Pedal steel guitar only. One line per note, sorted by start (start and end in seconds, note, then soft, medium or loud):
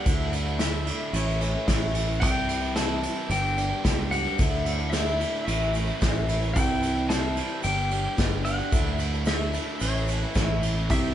0.00 0.63 F#5 loud
0.61 1.16 E5 medium
1.16 1.92 C#5 medium
2.20 2.71 G5 medium
2.76 3.31 A5 loud
3.31 3.81 G5 medium
4.11 4.95 F#5 loud
4.90 5.42 E5 medium
5.45 6.23 E5 medium
6.54 7.09 G5 medium
7.09 7.63 A5 loud
7.64 8.14 G5 medium
8.45 9.29 F#5 loud
9.27 9.83 E5 medium
9.81 10.59 C#5 medium
10.91 11.14 E5 loud